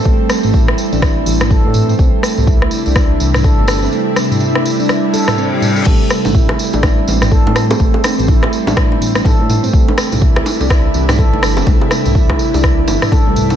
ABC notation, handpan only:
X:1
M:4/4
L:1/16
Q:"Swing 16ths" 1/4=124
K:C
V:1 name="Handpan"
A, z A, z E A, z D E z E, z A A, z C | A, z A, z E A, z D E z E, z A A, z C | A, z A, z E A, z D E z A z C G, z A | A, z A, z E A, z D E z E, z A A, z C |
A, z A, z E A, z D E z E, z A A, z C | A, z A, z E A, z D E z E, z A A, z C | A, z A, z E A, z D E z E, z A A, z C |]